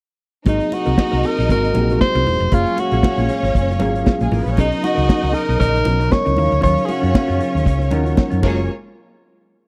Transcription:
0.45 fingered electric bass G#1, french horn section C3 A#3 F#4, reed electric piano F#3 A#3 C4 D#4 G#4, clean electric guitar C4 F#4 A#4, string section D#4 D#5, alto saxophone D#4, kick, closed hi-hat, muted conga
0.60 muted clean electric guitar stroke, closed hi-hat
0.72 alto saxophone F#4, muted clean electric guitar stroke, closed hi-hat, muted conga
0.86 fingered electric bass C2, clean electric guitar C4 F#4 A#4, closed hi-hat
0.98 kick, snare, high conga
1.12 fingered electric bass C2, clean electric guitar C4 F#4 A#4, closed hi-hat
1.23 clean electric guitar C4 F#4 A#4, alto saxophone A#4, closed hi-hat
1.38 fingered electric bass A#1, muted clean electric guitar stroke, closed hi-hat
1.49 fingered electric bass G#1, clean electric guitar C4 F#4 A#4, alto saxophone A#4, kick, closed hi-hat, muted conga, low conga
1.65 muted clean electric guitar stroke, closed hi-hat
1.73 fingered electric bass A#1, reed electric piano F#3 A#3 C4 D#4 G4, muted clean electric guitar stroke, closed hi-hat, muted conga
1.81 reed electric piano G#4
1.90 clean electric guitar C4 F#4 A#4, closed hi-hat
2.01 alto saxophone C5, kick, snare, high conga
2.15 fingered electric bass C2, clean electric guitar C4 F#4 A#4, closed hi-hat, high conga
2.27 fingered electric bass E1, open hi-hat, high conga
2.40 fingered electric bass F1, muted clean electric guitar stroke, closed hi-hat
2.51 fingered electric bass F#1, french horn section A#2 G#3 F5, reed electric piano F#3 A#3 C#4 G#4 F5, clean electric guitar A#3 F4 G#4, string section C#4 C#5, alto saxophone F4, kick, closed hi-hat, muted conga
2.66 muted clean electric guitar stroke, closed hi-hat
2.77 alto saxophone F#4, muted clean electric guitar stroke, closed hi-hat, muted conga
2.91 fingered electric bass A#1, clean electric guitar A#3 F4 G#4, closed hi-hat
3.03 muted clean electric guitar stroke, kick, snare, high conga
3.18 fingered electric bass A#1, clean electric guitar A#3 F4 G#4, closed hi-hat
3.29 clean electric guitar A#3 F4 G#4, closed hi-hat
3.43 fingered electric bass G#1, muted clean electric guitar stroke, snare, closed hi-hat
3.55 fingered electric bass F#1, muted clean electric guitar stroke, kick, closed hi-hat
3.71 muted clean electric guitar stroke, closed hi-hat
3.79 fingered electric bass G#1, reed electric piano F#3 A#3 C#4 F4 G#4, clean electric guitar A#3 F4, closed hi-hat, muted conga
3.83 clean electric guitar G#4
3.95 clean electric guitar A#3 F4 G#4, closed hi-hat
4.06 muted clean electric guitar stroke, kick, snare, high conga
4.21 fingered electric bass A#1, string section G#3 G#4, clean electric guitar A#3 F4 G#4, closed hi-hat, high conga
4.32 fingered electric bass A1, string section A#3 A#4, clean electric guitar A#3 F4 G#4, open hi-hat, high conga
4.41 string section B3 B4
4.46 fingered electric bass A#1, string section C#4 C#5, muted clean electric guitar stroke, closed hi-hat
4.57 fingered electric bass B1, french horn section C#3 D#4 A#4, reed electric piano F#3 B3 C#4 D#4 G#4, clean electric guitar C#4 D#4 A#4, string section D#4 D#5, alto saxophone D#4, kick, closed hi-hat, muted conga
4.65 reed electric piano A#4
4.71 muted clean electric guitar stroke, closed hi-hat
4.82 alto saxophone F#4, muted clean electric guitar stroke, closed hi-hat, muted conga
4.95 fingered electric bass C#2, clean electric guitar C#4 D#4 A#4, closed hi-hat
5.07 muted clean electric guitar stroke, kick, snare, high conga
5.22 fingered electric bass C#2, clean electric guitar C#4 D#4 A#4, closed hi-hat
5.32 clean electric guitar C#4 D#4 A#4, alto saxophone A#4, closed hi-hat
5.48 fingered electric bass B1, muted clean electric guitar stroke, snare, closed hi-hat
5.59 fingered electric bass A#1, clean electric guitar C#4 D#4 A#4, alto saxophone A#4, kick, closed hi-hat, low conga
5.75 muted clean electric guitar stroke, closed hi-hat
5.85 fingered electric bass B1, reed electric piano F#3 B3 C#4 D#4 A#4, muted clean electric guitar stroke, closed hi-hat, muted conga
6.00 clean electric guitar C#4 D#4 A#4, closed hi-hat
6.11 alto saxophone C#5, muted clean electric guitar stroke, kick, snare, high conga
6.25 fingered electric bass C#2, clean electric guitar C#4 D#4 A#4, closed hi-hat, high conga
6.36 fingered electric bass D#2, french horn section C#3 F#3 F5, reed electric piano F3 C#4 D#4 A#4 F5, string section C#4 C#5, muted clean electric guitar stroke, open hi-hat, high conga
6.43 reed electric piano F#3
6.50 fingered electric bass D2, muted clean electric guitar stroke, closed hi-hat
6.61 fingered electric bass D#2, clean electric guitar F#3 C#4 F4, alto saxophone C#5, kick, closed hi-hat, muted conga
6.77 muted clean electric guitar stroke, closed hi-hat
6.85 alto saxophone F#4 G#4, muted clean electric guitar stroke, closed hi-hat, muted conga
7.02 fingered electric bass F#2, clean electric guitar F#3 C#4 F4, closed hi-hat
7.15 kick, snare, high conga
7.28 fingered electric bass F#2, clean electric guitar F#3 C#4 F4, closed hi-hat
7.39 clean electric guitar F#3 C#4 F4, closed hi-hat
7.54 fingered electric bass D#2, muted clean electric guitar stroke, closed hi-hat
7.65 fingered electric bass C#2, muted clean electric guitar stroke, kick, closed hi-hat, muted conga
7.79 muted clean electric guitar stroke, closed hi-hat
7.91 fingered electric bass D#2, reed electric piano F#3 C#4 D#4 F4 A#4 F#5, clean electric guitar F#3 C#4 F4, closed hi-hat, muted conga
8.06 clean electric guitar F#3 C#4 F4, closed hi-hat
8.16 reed electric piano C#5, muted clean electric guitar stroke, kick, snare, high conga
8.30 fingered electric bass F#2, clean electric guitar F#3 C#4 F4, closed hi-hat
8.42 fingered electric bass F#1, french horn section A#2 G#3 F4, clean electric guitar G#3 A#3 F4, reed electric piano G#3 C#4 F4 F#4 A#4, string section A#3 G#4 C#5, kick, crash, muted conga

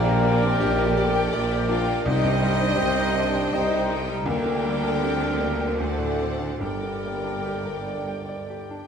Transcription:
Already playing: double bass section A#1, tuba A#1, grand piano A#1, cello section A#2, bassoon G3, french horn section A#3, violin section A#4, clarinet A#4, oboe D5, flute section G5
0.05 grand piano A#2
0.23 grand piano A#3, viola section D5, violin section G5
0.42 french horn section C4, grand piano D4
0.59 double bass section A#1, tuba A#1, cello section A#2, french horn section D4, violin section G4, grand piano G4
0.71 french horn section D#4
0.79 french horn section F4, grand piano A#4
0.88 french horn section A4
0.96 french horn section G4, viola section D5, grand piano D5, violin section G5
1.04 french horn section A4
1.13 french horn section A#4, grand piano G5
1.23 french horn section A4
1.33 tuba A#1, double bass section A#1, cello section A#2, bassoon G3, french horn section G4, violin section A#4, clarinet A#4, grand piano D5, oboe D5, flute section G5
1.51 grand piano G4
1.69 grand piano D4, french horn section F4, viola section D5, violin section G5
1.87 grand piano A#3
2.05 tuba C2, grand piano C2, double bass section C2, cello section C3, bassoon G3, french horn section D#4, viola section C5 D#5, clarinet C5, violin section D#5 G5, oboe D#5, flute section G5
2.23 grand piano G2
2.41 grand piano G3, viola section C5 D#5, violin section G5
2.60 french horn section D4, grand piano D#4
2.78 double bass section C2, tuba C2, cello section C3, french horn section C4, grand piano G4
2.97 grand piano D#4, french horn section D#4
3.15 french horn section D4, viola section C5 D#5, grand piano D#5, violin section G5
3.34 grand piano G5
3.52 double bass section C2, tuba C2, cello section C3, bassoon G3, french horn section D#4, clarinet C5, violin section C5, oboe D#5, grand piano D#5, flute section G5
3.72 grand piano G4
3.90 grand piano D#4, violin section A4 G5, viola section C5 D#5
4.09 grand piano G3
4.26 grand piano D2, double bass section D2, tuba D2, cello section D3, bassoon D3, french horn section A#3, viola section A#4 D5, clarinet A#4, violin section A#4 G5, oboe D5, flute section G5
4.45 grand piano D3
4.64 grand piano G3
4.83 grand piano D4
5.01 french horn section C4, grand piano G4, violin section G4
5.21 grand piano D4
5.40 french horn section A#3, grand piano D5
5.60 grand piano G5
5.79 grand piano D2, bassoon D3, french horn section A3, violin section A4 F#5, clarinet C5, viola section C5 D5, oboe D5, flute section F#5
5.99 grand piano A2
6.20 grand piano C4
6.39 grand piano D4
6.60 tuba G1, double bass section G1, grand piano G2, cello section G2, bassoon D3, french horn section G3, clarinet A#4, viola section A#4 D5, violin section A#4 G5, oboe D5, flute section G5
6.83 grand piano D3
7.03 grand piano A#3
7.24 grand piano D4
7.45 grand piano G4
7.65 grand piano A#4
7.87 grand piano D5
8.08 grand piano G5
8.29 grand piano D5
8.50 grand piano G4
8.71 grand piano D4

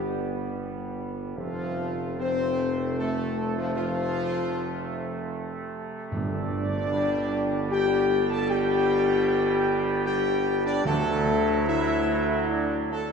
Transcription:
Already playing: tuba G1, french horn section G3, trombone section G3 B3, trumpet section G4
1.37 tuba F1, trombone section C3 A3, french horn section F3, trumpet section F4
2.19 french horn section C4, trumpet section C5
2.98 french horn section A3, trumpet section A4
3.57 french horn section F3, trumpet section F4
3.75 french horn section F3, trumpet section F4
6.12 tuba G1, timpani G2, french horn section D4, trumpet section D5
6.89 trombone section B2 G3
7.71 french horn section G4, trumpet section G5
8.29 french horn section A4, trumpet section A5
8.49 french horn section G4, trumpet section G5
10.05 french horn section G4, trumpet section G5
10.65 french horn section D4, trumpet section D5
10.85 tuba D2, trombone section A2 F#3, timpani D3, french horn section A3, trumpet section A4
11.67 french horn section E4, trumpet section E5
12.49 french horn section D4, trumpet section D5
12.90 french horn section A3, trumpet section A4

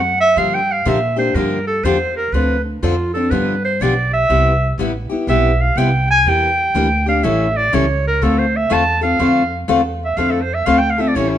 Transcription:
Already playing: upright bass F#2, clarinet F#5
0.20 clarinet E5
0.36 upright bass G2, steel-string acoustic guitar D3 F3 A#3 D4 G4, clarinet F5
0.54 clarinet G5
0.72 clarinet F5
0.85 upright bass A#2, steel-string acoustic guitar D3 F3 A#3 D4 G4, clarinet E5
1.16 steel-string acoustic guitar A#3 D4 G4, clarinet C5
1.34 upright bass G2, steel-string acoustic guitar D3 F3 A#3 D4 G4, clarinet A#4
1.67 clarinet A4
1.83 upright bass E2, steel-string acoustic guitar D3 F3 A#3 D4 G4, clarinet C5
2.17 clarinet A#4
2.32 upright bass D2, steel-string acoustic guitar D3 F3 C4 D4 A4, clarinet B4
2.64 clarinet D4
2.82 upright bass F2, steel-string acoustic guitar D3 F3 C4 D4 A4, clarinet F4
3.14 steel-string acoustic guitar C4 D4 A4, clarinet A4
3.30 upright bass G2, steel-string acoustic guitar D3 F3 B3 D4 G4, clarinet B4
3.65 clarinet C5
3.80 upright bass B1, steel-string acoustic guitar D3 F3 B3 D4 G4, clarinet D5
4.13 clarinet E5
4.29 upright bass C2, steel-string acoustic guitar C3 G3 B3 E4 G4
4.78 upright bass A1, steel-string acoustic guitar C3 G3 B3 E4 G4
5.09 steel-string acoustic guitar B3 E4 G4
5.27 upright bass B1, steel-string acoustic guitar C3 G3 B3 E4 G4, clarinet E5
5.61 clarinet F5
5.75 upright bass C2, steel-string acoustic guitar C3 G3 B3 E4 G4, clarinet G5
6.11 clarinet G#5
6.25 upright bass E2, steel-string acoustic guitar E3 A#3 D4 G4, clarinet G5
6.74 upright bass D2, steel-string acoustic guitar E3 A#3 D4 G4
7.06 steel-string acoustic guitar A#3 D4 G4, clarinet F5
7.23 upright bass A1, steel-string acoustic guitar E3 G3 C#4 E4 A4, clarinet E5
7.57 clarinet D5
7.73 upright bass C#2, steel-string acoustic guitar E3 G3 C#4 E4 A4, clarinet C#5
8.07 clarinet A#4
8.22 upright bass D2, steel-string acoustic guitar D3 A3 C4 F4 A4, clarinet A4
8.39 clarinet C5
8.57 clarinet E5
8.70 upright bass E2, steel-string acoustic guitar D3 A3 C4 F4 A4, clarinet A5
9.01 steel-string acoustic guitar C4 F4 A4, clarinet F5
9.19 upright bass F2, steel-string acoustic guitar D3 A3 C4 F4 A4
9.68 upright bass E2, steel-string acoustic guitar D3 A3 C4 F4 A4
10.05 clarinet E5
10.17 upright bass F2, steel-string acoustic guitar D3 A3 C4 F4 A4, clarinet F5
10.31 clarinet A4
10.42 clarinet C5
10.54 clarinet E5
10.66 upright bass D2, steel-string acoustic guitar D3 A3 C4 F4 A4, clarinet F5
10.78 clarinet G5
10.90 clarinet F5
10.98 steel-string acoustic guitar C4 F4 A4, clarinet E5
11.08 clarinet D5
11.15 upright bass A1, steel-string acoustic guitar E3 G3 C#4 E4 A4, clarinet C#5
11.29 clarinet E4

